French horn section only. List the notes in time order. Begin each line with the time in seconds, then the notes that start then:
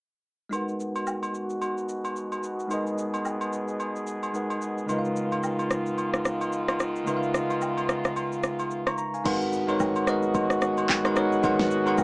0.53 B2 G#3 B3 F#4
2.71 G#4
4.89 D#3 G#3 B3 F4
9.25 B2 G#3 B3 F#4